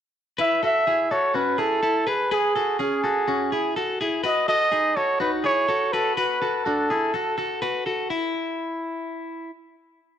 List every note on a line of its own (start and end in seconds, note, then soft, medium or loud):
0.38 0.63 E4 medium
0.38 0.62 B4 medium
0.38 0.61 E5 medium
0.63 0.87 F#4 medium
0.63 0.87 A4 medium
0.63 1.13 E5 medium
0.87 1.11 E4 medium
0.87 1.11 G#4 medium
1.11 1.33 F#4 soft
1.11 1.35 A4 medium
1.11 1.37 C#5 medium
1.34 1.59 C#4 medium
1.34 1.59 F#4 medium
1.34 1.61 B4 medium
1.58 1.82 E4 medium
1.58 1.82 G#4 medium
1.58 2.10 A4 medium
1.83 2.07 E4 medium
1.83 2.06 A4 medium
2.07 2.31 G#4 medium
2.07 2.30 B4 medium
2.07 2.31 B4 medium
2.31 2.56 G#4 medium
2.31 2.77 G#4 medium
2.31 2.55 B4 medium
2.56 2.80 F#4 soft
2.56 2.79 A4 medium
2.79 3.04 C#4 medium
2.79 3.03 G#4 medium
2.79 3.72 G#4 medium
3.04 3.26 F#4 medium
3.04 3.28 A4 medium
3.28 3.52 C#4 medium
3.28 3.52 F#4 medium
3.52 3.77 E4 soft
3.52 3.76 G#4 medium
3.76 4.01 F#4 medium
3.76 4.00 A4 medium
4.01 4.24 E4 medium
4.01 4.23 G#4 medium
4.23 4.47 F#4 medium
4.23 4.48 B4 medium
4.23 4.47 D#5 medium
4.48 4.72 F#4 soft
4.48 4.71 A4 medium
4.48 4.98 D#5 loud
4.72 4.96 D#4 medium
4.72 4.96 G#4 medium
4.96 5.19 F#4 soft
4.96 5.21 A4 medium
4.96 5.20 C#5 medium
5.20 5.45 D#4 medium
5.20 5.44 F#4 medium
5.20 5.31 B4 medium
5.44 5.69 E4 medium
5.44 5.68 G#4 medium
5.44 5.95 C#5 medium
5.68 5.93 F#4 medium
5.68 5.93 A4 medium
5.93 6.17 F#4 medium
5.93 6.16 A4 medium
5.93 6.16 B4 medium
6.16 6.41 F#4 medium
6.16 6.66 B4 medium
6.16 6.41 B4 medium
6.42 6.65 F#4 soft
6.42 6.65 A4 medium
6.65 6.90 D4 medium
6.65 6.90 F#4 medium
6.65 7.61 A4 medium
6.90 7.14 E4 medium
6.90 7.13 G#4 medium
7.14 7.37 F#4 medium
7.14 7.37 A4 medium
7.38 7.62 F#4 soft
7.38 7.61 A4 medium
7.62 7.85 F#4 medium
7.62 7.86 B4 medium
7.86 8.10 F#4 medium
7.86 8.10 A4 medium
8.10 9.50 E4 medium